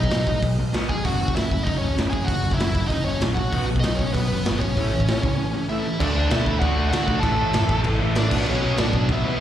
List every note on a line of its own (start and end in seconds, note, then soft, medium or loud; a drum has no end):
0.00 0.11 B1 medium
0.00 0.11 B2 medium
0.00 0.10 F#3 medium
0.00 0.38 D#4 medium
0.00 0.40 D#5 medium
0.00 kick medium
0.11 0.27 B1 medium
0.11 0.25 B2 medium
0.11 0.25 F#3 medium
0.11 snare loud
0.11 open hi-hat medium
0.26 0.42 B1 medium
0.26 0.41 B2 medium
0.26 0.41 F#3 medium
0.26 kick medium
0.42 0.58 B1 medium
0.42 0.57 B2 medium
0.42 0.57 F#3 medium
0.42 kick medium
0.42 open hi-hat medium
0.59 0.74 B1 medium
0.59 0.72 B2 medium
0.59 0.73 F#3 medium
0.73 1.04 B1 medium
0.73 0.88 B2 medium
0.73 0.89 F#3 loud
0.73 0.89 B3 loud
0.73 snare loud
0.73 open hi-hat medium
0.89 1.04 B2 medium
0.89 1.04 F#3 medium
0.89 1.04 G#4 medium
0.89 1.04 G#5 loud
0.89 kick medium
1.04 1.20 F#1 medium
1.04 1.20 F#2 medium
1.04 1.20 C#3 medium
1.04 1.21 F#3 loud
1.04 1.34 F#4 medium
1.04 1.35 F#5 medium
1.04 kick medium
1.04 open hi-hat medium
1.22 1.36 F#1 medium
1.22 1.35 F#2 medium
1.22 1.35 C#3 medium
1.28 kick medium
1.36 1.66 F#1 medium
1.36 1.50 F#2 medium
1.36 1.50 C#3 medium
1.36 1.66 E4 medium
1.36 1.68 E5 medium
1.36 snare loud
1.36 open hi-hat medium
1.51 1.66 F#2 medium
1.51 1.66 C#3 medium
1.51 kick medium
1.63 1.80 D#4 medium
1.63 1.77 D#5 medium
1.63 kick loud
1.63 open hi-hat medium
1.68 1.82 F#1 medium
1.68 1.82 F#2 medium
1.68 1.82 C#3 medium
1.78 1.96 C#4 medium
1.78 1.94 C#5 medium
1.83 1.98 C#2 medium
1.83 1.97 F#2 medium
1.83 1.97 C#3 medium
1.98 2.28 F#1 medium
1.98 2.12 F#2 loud
1.98 2.12 C#3 loud
1.98 2.13 F#3 loud
1.98 snare loud
1.98 open hi-hat medium
2.10 2.27 F#2 medium
2.10 2.27 C#3 medium
2.10 2.26 G#4 medium
2.10 2.26 G#5 loud
2.10 kick medium
2.24 2.42 F#2 medium
2.24 2.57 F#4 medium
2.24 2.54 F#5 loud
2.28 2.44 F#1 medium
2.28 2.43 C#3 medium
2.28 kick medium
2.28 open hi-hat medium
2.45 2.60 F#1 medium
2.45 2.57 F#2 medium
2.45 2.58 C#3 medium
2.52 2.87 E5 medium
2.52 kick medium
2.58 2.75 F#1 medium
2.58 2.73 F#2 medium
2.58 2.73 C#3 medium
2.58 2.88 E4 medium
2.58 snare loud
2.58 open hi-hat medium
2.74 2.90 F#1 medium
2.74 2.89 F#2 medium
2.74 2.89 C#3 medium
2.74 kick medium
2.88 3.05 F#1 medium
2.88 3.04 F#2 medium
2.88 3.05 C#3 medium
2.88 3.04 D#5 medium
2.88 kick medium
2.88 open hi-hat medium
2.92 3.06 D#4 medium
3.04 3.22 F#1 medium
3.04 3.19 F#2 medium
3.04 3.20 C#3 medium
3.04 3.22 C#4 medium
3.04 3.20 C#5 medium
3.21 3.52 A#1 medium
3.21 3.36 F#2 loud
3.21 3.36 C#3 loud
3.21 3.37 F#3 loud
3.21 snare loud
3.21 open hi-hat medium
3.35 3.51 F#2 medium
3.35 3.51 C#3 medium
3.35 3.65 F#5 loud
3.35 kick medium
3.39 3.67 F#4 medium
3.53 3.68 B1 medium
3.53 3.68 B2 medium
3.53 3.68 F#3 medium
3.53 3.68 B3 loud
3.53 kick loud
3.53 open hi-hat medium
3.69 3.84 B1 medium
3.69 3.83 B2 medium
3.69 3.83 F#3 medium
3.76 kick medium
3.80 3.96 D#5 medium
3.80 snare loud
3.80 open hi-hat medium
3.85 4.14 B1 medium
3.85 3.99 B2 medium
3.85 3.99 F#3 medium
3.85 3.99 D#4 medium
3.95 4.13 C#5 medium
3.95 kick medium
3.99 4.14 B2 medium
3.99 4.14 F#3 medium
3.99 4.14 C#4 medium
4.13 4.30 B1 medium
4.13 4.30 B3 medium
4.13 4.27 B4 medium
4.13 kick medium
4.13 open hi-hat medium
4.17 4.30 B2 medium
4.17 4.30 F#3 medium
4.28 4.45 F#1 medium
4.28 4.44 B2 medium
4.28 4.45 F#3 medium
4.28 4.59 B4 medium
4.33 4.60 B3 medium
4.45 4.76 G#1 medium
4.45 4.60 B2 loud
4.45 4.61 F#3 loud
4.45 4.61 B3 loud
4.45 snare loud
4.45 open hi-hat medium
4.60 4.76 B2 medium
4.60 4.76 F#3 medium
4.60 5.66 C#4 medium
4.60 5.65 C#5 medium
4.60 kick medium
4.76 4.92 A1 medium
4.76 4.91 A2 medium
4.76 4.91 E3 medium
4.76 4.92 A3 medium
4.76 kick medium
4.76 open hi-hat medium
4.92 5.07 A1 medium
4.92 5.06 A2 medium
4.92 5.06 E3 medium
5.00 kick medium
5.08 5.23 A1 medium
5.08 5.22 A2 medium
5.08 5.22 E3 medium
5.08 snare loud
5.08 open hi-hat medium
5.23 5.38 C#2 medium
5.23 5.38 A2 medium
5.23 5.38 E3 medium
5.23 kick medium
5.39 5.53 A2 medium
5.39 5.53 E3 medium
5.54 5.68 A2 medium
5.54 5.68 E3 medium
5.69 5.83 A2 loud
5.69 5.83 E3 loud
5.69 5.85 A3 loud
5.69 5.98 E4 medium
5.69 6.01 E5 medium
5.84 5.98 A2 medium
5.84 5.98 E3 medium
5.99 6.14 D2 loud
5.99 6.15 D3 medium
5.99 6.14 A3 medium
5.99 6.13 D4 loud
5.99 6.30 D4 medium
5.99 6.29 D5 medium
5.99 kick loud
5.99 crash loud
5.99 crash medium
6.14 6.29 D2 medium
6.14 6.29 D3 medium
6.14 6.30 A3 medium
6.14 6.30 D4 medium
6.30 6.44 B2 medium
6.30 6.47 D3 loud
6.30 6.45 A3 loud
6.30 6.45 D4 loud
6.30 6.59 E5 medium
6.30 snare loud
6.30 crash medium
6.34 6.62 E4 medium
6.46 6.60 D2 medium
6.46 6.59 D3 medium
6.46 6.60 A3 medium
6.46 6.61 D4 medium
6.46 kick medium
6.59 6.76 D2 medium
6.59 6.76 D3 medium
6.59 6.76 A3 medium
6.59 6.76 D4 loud
6.59 6.91 F#4 medium
6.59 6.89 F#5 medium
6.59 kick loud
6.59 crash medium
6.77 6.91 D2 medium
6.77 6.89 D3 medium
6.77 6.90 A3 medium
6.77 6.91 D4 medium
6.90 7.06 D2 medium
6.90 7.07 D3 loud
6.90 7.06 A3 loud
6.90 7.06 D4 loud
6.90 7.22 F#4 medium
6.90 7.24 F#5 loud
6.90 snare loud
6.90 crash medium
7.07 7.21 B1 medium
7.07 7.22 D3 medium
7.07 7.23 A3 medium
7.07 7.23 D4 loud
7.07 kick medium
7.20 7.37 A1 loud
7.20 7.38 A2 medium
7.20 7.38 E3 medium
7.20 7.81 A4 medium
7.20 7.80 A5 loud
7.20 kick loud
7.20 crash medium
7.24 7.37 A3 loud
7.38 7.54 A1 loud
7.38 7.53 A2 medium
7.38 7.53 E3 medium
7.38 7.53 A3 loud
7.53 7.69 F#2 medium
7.53 7.69 A2 medium
7.53 7.68 E3 loud
7.53 7.67 A3 loud
7.53 snare loud
7.53 crash medium
7.69 7.83 A1 medium
7.69 7.82 A2 medium
7.69 7.83 E3 medium
7.69 7.84 A3 medium
7.69 kick medium
7.84 7.99 A1 medium
7.84 8.00 A2 loud
7.84 8.00 E3 loud
7.84 7.99 A3 loud
7.84 kick medium
7.84 crash medium
8.00 8.15 A1 medium
8.00 8.15 A2 medium
8.00 8.16 E3 medium
8.00 8.16 A3 loud
8.15 8.31 A1 medium
8.15 8.31 A2 loud
8.15 8.31 E3 loud
8.15 8.31 A3 loud
8.15 8.46 D4 medium
8.15 8.49 D5 medium
8.15 snare loud
8.15 crash medium
8.31 8.46 B1 medium
8.31 8.47 B2 loud
8.31 8.47 F#3 loud
8.31 8.45 B3 loud
8.31 kick loud
8.31 crash loud
8.46 8.62 B1 loud
8.46 8.61 B2 medium
8.46 8.62 F#3 loud
8.46 8.62 B3 loud
8.46 8.78 C#4 medium
8.46 8.80 C#5 medium
8.46 crash medium
8.62 8.77 B1 medium
8.62 8.77 B2 medium
8.62 8.78 F#3 medium
8.62 8.76 B3 medium
8.77 8.93 A2 medium
8.77 8.91 B2 medium
8.77 8.92 F#3 loud
8.77 8.92 B3 loud
8.77 9.09 D4 medium
8.77 9.08 D5 medium
8.77 snare loud
8.77 crash medium
8.92 9.07 B1 medium
8.92 9.09 B2 medium
8.92 9.09 F#3 medium
8.92 9.07 B3 medium
8.92 kick medium
9.08 9.23 B1 loud
9.08 9.24 B2 medium
9.08 9.25 F#3 medium
9.08 9.25 B3 loud
9.08 kick loud
9.08 crash medium
9.13 9.40 E4 medium
9.13 9.40 E5 loud
9.25 9.38 B1 loud
9.25 9.40 B2 medium
9.25 9.40 F#3 medium
9.25 9.40 B3 medium